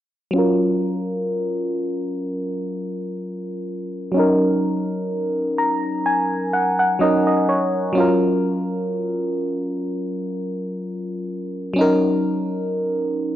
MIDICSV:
0, 0, Header, 1, 2, 480
1, 0, Start_track
1, 0, Key_signature, 6, "major"
1, 0, Tempo, 952381
1, 172, Time_signature, 4, 2, 24, 8
1, 6733, End_track
2, 0, Start_track
2, 0, Title_t, "FM electric piano"
2, 0, Program_c, 0, 5
2, 156, Note_on_c, 0, 54, 65
2, 168, Note_on_c, 0, 61, 58
2, 181, Note_on_c, 0, 65, 56
2, 194, Note_on_c, 0, 70, 73
2, 280, Control_c, 0, 64, 127
2, 2064, Note_off_c, 0, 54, 0
2, 2070, Note_off_c, 0, 61, 0
2, 2075, Note_on_c, 0, 54, 69
2, 2077, Note_off_c, 0, 65, 0
2, 2083, Note_off_c, 0, 70, 0
2, 2088, Note_on_c, 0, 61, 63
2, 2099, Control_c, 0, 64, 0
2, 2101, Note_on_c, 0, 63, 59
2, 2113, Note_on_c, 0, 70, 71
2, 2174, Control_c, 0, 64, 127
2, 2814, Note_on_c, 0, 82, 62
2, 3036, Note_off_c, 0, 82, 0
2, 3053, Note_on_c, 0, 80, 67
2, 3276, Note_off_c, 0, 80, 0
2, 3293, Note_on_c, 0, 78, 65
2, 3413, Note_off_c, 0, 78, 0
2, 3423, Note_on_c, 0, 78, 63
2, 3503, Note_off_c, 0, 54, 0
2, 3510, Note_off_c, 0, 61, 0
2, 3516, Note_off_c, 0, 63, 0
2, 3523, Note_off_c, 0, 70, 0
2, 3524, Note_on_c, 0, 54, 51
2, 3525, Note_off_c, 0, 78, 0
2, 3530, Note_on_c, 0, 61, 48
2, 3534, Note_on_c, 0, 75, 63
2, 3537, Note_on_c, 0, 63, 47
2, 3543, Note_on_c, 0, 70, 56
2, 3654, Note_off_c, 0, 75, 0
2, 3664, Note_on_c, 0, 75, 64
2, 3766, Note_off_c, 0, 75, 0
2, 3774, Note_on_c, 0, 73, 67
2, 3989, Note_off_c, 0, 54, 0
2, 3995, Note_on_c, 0, 54, 69
2, 3996, Note_off_c, 0, 73, 0
2, 4002, Note_off_c, 0, 61, 0
2, 4008, Note_on_c, 0, 61, 65
2, 4015, Note_off_c, 0, 63, 0
2, 4018, Note_off_c, 0, 70, 0
2, 4018, Control_c, 0, 64, 0
2, 4020, Note_on_c, 0, 65, 60
2, 4033, Note_on_c, 0, 70, 72
2, 4114, Control_c, 0, 64, 127
2, 5903, Note_off_c, 0, 54, 0
2, 5910, Note_off_c, 0, 61, 0
2, 5914, Note_on_c, 0, 54, 67
2, 5916, Note_off_c, 0, 65, 0
2, 5922, Note_off_c, 0, 70, 0
2, 5927, Note_on_c, 0, 61, 61
2, 5939, Control_c, 0, 64, 0
2, 5940, Note_on_c, 0, 63, 65
2, 5952, Note_on_c, 0, 70, 74
2, 6029, Control_c, 0, 64, 127
2, 6733, Note_off_c, 0, 54, 0
2, 6733, Note_off_c, 0, 61, 0
2, 6733, Note_off_c, 0, 63, 0
2, 6733, Note_off_c, 0, 70, 0
2, 6733, End_track
0, 0, End_of_file